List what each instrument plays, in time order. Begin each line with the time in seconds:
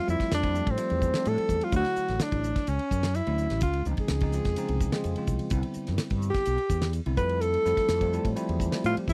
0.07 fretless electric bass F2, tine electric piano F3 G3 A3 C4 F4, alto saxophone E4, hi-hat pedal
0.20 kick, snare, ride
0.31 fretless electric bass F2, alto saxophone D4, snare, hi-hat pedal, ride
0.43 tine electric piano F3 G3 A3 C4 E4, kick, ride
0.55 tine electric piano F3 G3 A3 C4 D4, hi-hat pedal
0.67 fretless electric bass A2, alto saxophone C4, kick, ride
0.78 tine electric piano F3 G3 A3 C4 F4, hi-hat pedal, ride
0.90 fretless electric bass E2, ride
1.02 kick, hi-hat pedal
1.14 tine electric piano F3 G3 A3 C4 D4, snare, ride
1.25 fretless electric bass A2, alto saxophone A4, hi-hat pedal, ride
1.37 tine electric piano F3 G3 A3 C4 E4, muted fretless electric bass stroke, ride
1.49 fretless electric bass E2, kick, hi-hat pedal
1.61 alto saxophone F4, ride
1.72 fretless electric bass D2, tine electric piano D3 F#3 A3 E4 C#5, alto saxophone F#4, kick, hi-hat pedal, ride
1.85 snare, ride
1.96 muted fretless electric bass stroke, hi-hat pedal
2.08 fretless electric bass A1, snare, ride
2.20 alto saxophone D4, snare, hi-hat pedal, ride
2.32 fretless electric bass A1, kick, ride
2.43 hi-hat pedal
2.56 kick, snare, ride
2.67 fretless electric bass C#2, alto saxophone C#4, hi-hat pedal, ride
2.79 ride
2.91 fretless electric bass F#2, kick, hi-hat pedal
3.03 snare, ride
3.15 alto saxophone E4, hi-hat pedal, ride
3.27 fretless electric bass D2, tine electric piano D3 F#3 A3 C#4 E4, ride
3.38 hi-hat pedal
3.50 fretless electric bass A1, snare, ride
3.61 fretless electric bass C#2, alto saxophone F4, kick, hi-hat pedal, ride
3.73 ride
3.85 fretless electric bass C#2, tine electric piano C#3 F3 G#3 C4 D#4, hi-hat pedal
3.97 alto saxophone G#4, kick, ride
4.08 fretless electric bass C#2, snare, hi-hat pedal, ride
4.21 tine electric piano C#3 F3 G#3 C4 D#4, kick, ride
4.32 tine electric piano C#3 F3 G#3 C4 F4, snare, hi-hat pedal
4.45 fretless electric bass F2, kick, snare, ride
4.56 tine electric piano C#3 F3 G#3 C4 D#4, hi-hat pedal, ride
4.68 fretless electric bass C2, ride
4.80 kick, hi-hat pedal
4.92 tine electric piano C#3 F3 G#3 C4 F4, snare, ride
5.04 fretless electric bass F2, hi-hat pedal, ride
5.16 tine electric piano C#3 F3 G#3 C4 F4, muted fretless electric bass stroke, ride
5.27 fretless electric bass C2, kick, hi-hat pedal
5.39 ride
5.50 fretless electric bass C2, tine electric piano D3 G3 B3 C4 E4, kick, hi-hat pedal, ride
5.63 ride
5.74 muted fretless electric bass stroke, hi-hat pedal
5.87 fretless electric bass G2, snare, ride
5.98 snare, hi-hat pedal, ride
6.10 fretless electric bass G2, kick, ride
6.22 hi-hat pedal
6.30 alto saxophone G4
6.34 kick, snare, ride
6.45 fretless electric bass B1, hi-hat pedal, ride
6.58 ride
6.69 fretless electric bass E2, kick, hi-hat pedal
6.82 snare, ride
6.93 hi-hat pedal, ride
7.06 fretless electric bass C2, tine electric piano D3 G3 B3 C4 E4, ride
7.17 fretless electric bass F2, tine electric piano F3 G3 A3 C4 E4, alto saxophone B4, kick, hi-hat pedal
7.29 ride
7.41 alto saxophone A4, hi-hat pedal, ride
7.54 ride
7.65 fretless electric bass F2, tine electric piano F3 G3 A3 C4 E4, snare, hi-hat pedal
7.77 kick, snare, ride
7.88 fretless electric bass F2, snare, hi-hat pedal, ride
8.01 tine electric piano F3 G3 A3 C4 F4, kick, ride
8.13 tine electric piano F3 G3 A3 C4 E4, hi-hat pedal
8.25 fretless electric bass A2, kick, ride
8.36 tine electric piano F3 G3 A3 C4 E4, hi-hat pedal, ride
8.49 fretless electric bass E2, ride
8.60 kick, hi-hat pedal
8.72 tine electric piano F3 G3 A3 C4 E4, snare, ride
8.84 fretless electric bass A2, alto saxophone F4, hi-hat pedal, ride
8.96 tine electric piano F3 G3 A3 C4 G4, muted fretless electric bass stroke, ride
9.08 fretless electric bass E2, alto saxophone E4, kick, hi-hat pedal